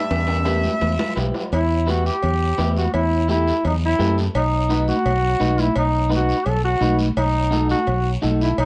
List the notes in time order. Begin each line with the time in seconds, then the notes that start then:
Already playing: G2 E5
0.11 E2, high timbale, long guiro
0.28 high timbale
0.46 E4 G4 B4, high conga, high timbale, short guiro
0.64 high conga, short guiro
0.82 E2, high conga, low timbale, long guiro
0.99 low conga, low timbale
1.16 B1 E4 G4 B4, low conga, low timbale, short guiro
1.34 low conga, low timbale, short guiro
1.52 E2 E4, cowbell, long guiro
1.72 high conga
1.87 E4 F#4 G4 B4, high conga, short guiro
2.06 G4, short guiro
2.23 E2, cowbell, high conga, low conga, long guiro
2.58 E2 E4 G4 B4, high conga, low timbale, short guiro
2.77 F#4, high conga, short guiro
2.94 E2 E4, cowbell, long guiro
3.12 high conga
3.28 E4 G4 A4, high conga, short guiro
3.47 short guiro
3.64 E2 D#4, cowbell, high conga, low conga, long guiro
3.85 E4
3.99 F#2 E4 G4 A4, high conga, low timbale, short guiro
4.18 high conga, short guiro
4.35 B1 D#4, cowbell, long guiro
4.53 high conga
4.69 D#4 F#4 B4, high conga, short guiro
4.88 F#4, high conga, short guiro
5.06 B1, cowbell, high conga, low conga, long guiro
5.40 B1 D#4 F#4 B4, high conga, short guiro
5.58 E4, high conga, short guiro
5.76 B1 D#4, cowbell, long guiro
5.95 high conga
6.10 D#4 F#4 B4, high conga, short guiro
6.15 F#4
6.29 short guiro
6.46 B1 A4, cowbell, high conga, low conga, long guiro
6.65 F#4
6.81 B1 D#4 F#4 B4, high conga, low conga, short guiro
6.99 high conga, short guiro
7.17 B1 D#4, cowbell, long guiro
7.36 high conga
7.51 D#4 F#4 A4, high conga, short guiro
7.69 F#4, high conga, short guiro
7.87 B1, cowbell, high conga, low conga, long guiro
8.22 B1 D#4 F#4 A4, high conga, short guiro
8.41 E4, short guiro
8.58 B1 D#4, cowbell, long guiro